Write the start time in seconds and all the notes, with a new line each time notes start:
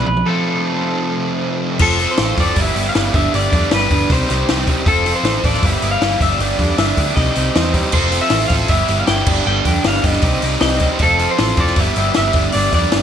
0.06 B1 B4, mid tom
0.17 mid tom
0.26 F2 C3 F3 A3 C4 F4 A4
1.79 F1 F3 C4 F4 A4, kick, crash
1.99 F3 C4 F4 A4, open hi-hat
2.11 C5
2.17 A1 F3 C4 F4 A4, snare, open hi-hat
2.37 F#1 F3 C4 F4 A4 D5, kick, open hi-hat
2.56 G1 G3 B3 E4 G4, kick, open hi-hat
2.60 E5
2.75 G1 G3 B3 E4 G4, open hi-hat
2.89 F5
2.95 G1 G3 B3 E4 G4, snare, open hi-hat
3.13 G1 G2 D3 G3 B3 D4 G4 E5, kick, open hi-hat
3.33 G1 G2 D3 G3 B3 D4 G4 D5, open hi-hat
3.52 F2 G2 D3 G3 B3 D4 G4, kick, open hi-hat
3.71 G1 G2 D3 G3 B3 D4 G4 B4, snare, open hi-hat
3.90 G1 G2 D3 G3 B3 D4 G4, kick, open hi-hat
4.09 C2 C3 G3 C4 D#4 G4 C5, kick, open hi-hat
4.29 C2 C3 G3 C4 D#4 G4, open hi-hat
4.49 C2 C3 G3 C4 D#4 G4, snare, open hi-hat
4.67 C3 G3 C4 D#4 G4, kick, open hi-hat
4.86 F1 F3 C4 F4 A4, kick, open hi-hat
5.06 F3 C4 F4 A4, open hi-hat
5.16 C5
5.23 A1 F3 C4 F4 A4, snare, open hi-hat
5.44 A1 F3 C4 F4 A4 D5, kick, open hi-hat
5.54 snare
5.62 G1 G3 B3 E4 G4 E5, kick, open hi-hat
5.82 G1 G3 B3 E4 G4, open hi-hat
5.91 F5
6.01 G1 G3 B3 E4 G4, snare, open hi-hat
6.21 G1 G2 D3 G3 B3 D4 G4 E5, kick, open hi-hat
6.39 G1 G2 D3 G3 B3 D4 G4 D5, open hi-hat
6.58 F2 G2 D3 G3 B3 D4 G4, kick, open hi-hat
6.77 G1 G2 D3 G3 B3 D4 G4 E5, snare, open hi-hat
6.97 D2 G2 D3 G3 B3 D4 G4, kick, open hi-hat
7.16 C2 C3 G3 C4 D#4 G4 D#5, kick, open hi-hat
7.35 C2 C3 G3 C4 D#4 G4, open hi-hat
7.55 E2 C3 G3 C4 D#4 G4, snare, open hi-hat
7.73 C3 G3 C4 D#4 G4, kick, open hi-hat
7.92 F1 F3 C4 F4 A4 C5, kick, crash
8.11 F3 C4 F4 A4, open hi-hat
8.21 E5
8.30 A1 F3 C4 F4 A4, snare, open hi-hat
8.48 A1 F3 F5, kick, open hi-hat
8.52 C4 F4 A4
8.68 G1 G3 B3 E4 G4 E5, kick, open hi-hat
8.88 G1 G3 B3 E4 G4, open hi-hat
9.00 F5
9.07 G1 G3 B3 E4 G4 G5, snare, open hi-hat
9.27 G1 G2 D3 G3 B3 D4 G4, kick, crash
9.46 G1 G2 D3 G3 B3 D4 G4 G5
9.65 F2 G2 D3 G3 B3 D4 G4, kick, open hi-hat
9.84 G1 G2 D3 G3 B3 D4 G4 F5, snare, open hi-hat
10.04 G1 G2 D3 G3 B3 D4 G4 D#5, kick, open hi-hat
10.13 snare
10.22 C2 C3 G3 C4 D#4 G4, kick, open hi-hat
10.42 C2 C3 G3 C4 D#4 G4, open hi-hat
10.61 C2 C3 G3 C4 D#4 G4 D#5, snare, open hi-hat
10.80 C3 G3 C4 D#4 G4, kick, open hi-hat
10.99 F1 F3 C4 F4 A4, kick, open hi-hat
11.18 F3 C4 F4 A4, open hi-hat
11.31 C5
11.38 A1 F3 C4 F4 A4, snare, open hi-hat
11.57 F1 F3 C4 F4 A4 D5, kick, open hi-hat
11.67 snare
11.76 G1 G3 B3 E4 G4 E5, kick, open hi-hat
11.96 G1 G3 B3 E4 G4, open hi-hat
12.14 G1 G3 B3 E4 G4 E5, snare, open hi-hat
12.33 G1 G2 D3 G3 B3 D4, kick, open hi-hat
12.37 G4
12.52 G1 G2 D3 G3 D5, open hi-hat
12.56 B3 D4 G4
12.72 F2 G2 D3 G3 B3 D4 D5, kick, open hi-hat
12.77 G4
12.92 G1 G2 D3 G3 B3 D4, snare, open hi-hat
12.96 G4